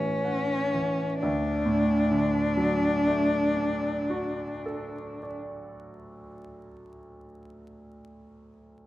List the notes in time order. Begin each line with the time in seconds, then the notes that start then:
Already playing: A2 E3 C#4 G4
0.25 F#5
0.74 E3
1.19 D2 D4
1.66 A2
2.11 D3
2.57 F#3
3.07 A3
3.57 D4
4.10 F#4
4.66 A4
5.23 D5